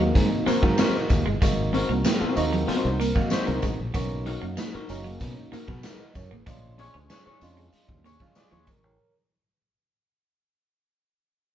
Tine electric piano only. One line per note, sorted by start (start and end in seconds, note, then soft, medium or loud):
0.00 0.46 A#3 medium
0.00 0.47 C4 medium
0.00 0.47 D#4 medium
0.00 0.47 F#4 medium
0.62 1.25 A#3 medium
0.62 1.26 C4 medium
0.62 1.26 D#4 medium
0.62 1.26 F#4 loud
1.41 2.17 A#3 medium
1.41 2.18 C4 medium
1.41 2.18 D#4 medium
1.41 2.18 F#4 medium
2.35 2.99 A#3 medium
2.35 2.99 C4 medium
2.35 3.00 D#4 medium
2.35 3.00 F#4 loud
2.35 2.66 D#5 medium
2.68 2.98 C5 medium
2.99 3.29 A#4 medium
3.15 3.78 A#3 loud
3.15 3.78 C4 medium
3.15 3.79 D#4 medium
3.15 3.62 F#4 medium
3.31 3.61 G#4 medium
3.63 3.92 F#4 medium
3.94 4.70 A#3 medium
3.94 4.70 C#4 medium
3.94 4.70 D#4 medium
3.94 4.71 F#4 loud
4.89 5.52 A#3 medium
4.89 5.52 C#4 medium
4.89 5.53 D#4 medium
4.89 5.53 F#4 medium
5.68 5.83 G#4 medium
5.68 5.83 B4 medium
5.84 6.14 B4 medium
5.84 6.14 D#5 medium
6.16 6.31 A#4 medium
6.16 6.31 C#5 medium
6.31 6.61 G#4 medium
6.31 6.61 B4 medium
6.46 7.22 G#3 medium
6.46 7.23 C#4 medium
6.46 7.23 D4 medium
6.46 7.23 F4 loud
7.41 8.04 G#3 loud
7.41 8.05 C#4 medium
7.41 8.05 D4 medium
7.41 8.05 F4 loud
8.20 8.83 G#3 medium
8.20 8.36 C#4 medium
8.20 8.36 D4 medium
8.20 8.35 F4 loud
8.37 8.52 D4 soft
8.37 8.51 F4 medium
8.52 8.67 F4 medium
8.52 8.67 G#4 medium
8.68 8.83 A#4 medium
8.84 9.14 A#4 medium
8.84 9.14 C#5 medium